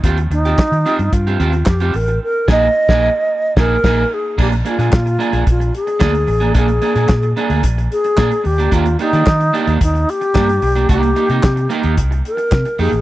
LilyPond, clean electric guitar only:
\new Staff \with { instrumentName = "Clean electric guitar" } { \time 4/4 \key bes \mixolydian \tempo 4 = 111 <c' f' g'>16 r8 <c' f' g'>16 r8 <c' f' g'>16 r8 <c' f' g'>16 <c' f' g'>16 r8 <c' f' g'>16 r8 | r8 <bes ees' aes'>8 r16 <bes ees' aes'>8 r8. <bes ees' aes'>8 <bes ees' aes'>8 r8 | <bes d' aes'>16 r16 <bes d' aes'>16 <bes d' aes'>16 r8 <bes d' aes'>16 <bes d' aes'>16 r4 <bes d' aes'>16 r8 <bes d' aes'>16 | <bes d' aes'>16 r16 <bes d' aes'>16 <bes d' aes'>16 r8 <bes d' aes'>16 <bes d' aes'>16 r4 <bes d' aes'>16 r8 <bes d' g'>16 |
<bes d' g'>16 r16 <bes d' g'>16 <bes d' g'>16 r8 <bes d' g'>16 <bes d' g'>16 r4 <bes d' g'>16 r8 <bes d' g'>16 | <bes ees' g'>16 r16 <bes ees' g'>16 <bes ees' g'>16 r8 <bes ees' g'>16 <bes ees' g'>16 r4. <bes ees' g'>16 r16 | }